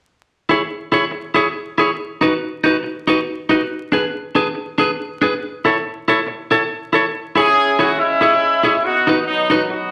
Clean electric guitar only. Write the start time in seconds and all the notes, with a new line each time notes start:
0.49 E4 G#4 C#5
0.92 E4 G#4 C#5
1.11 muted clean electric guitar stroke
1.34 E4 G#4 C#5
1.78 E4 G#4 C#5
2.21 D#4 F#4 B4
2.64 D#4 F#4 B4
2.83 muted clean electric guitar stroke
3.07 D#4 F#4 B4
3.49 D#4 F#4 B4
3.92 D4 G#4 B4
4.35 D4 G#4 B4
4.55 muted clean electric guitar stroke
4.78 D4 G#4 B4
5.22 D4 G#4 B4
5.65 E4 A4 C#5
6.08 E4 A4 C#5
6.26 muted clean electric guitar stroke
6.51 E4 A4 C#5
6.93 E4 A4 C#5
7.36 E4 G#4 C#5
7.79 E4 G#4 C#5
7.97 muted clean electric guitar stroke
8.21 E4 G#4 C#5
8.63 E4 G#4 C#5
9.07 D#4 F#4 B4
9.50 D#4 F#4 B4
9.69 muted clean electric guitar stroke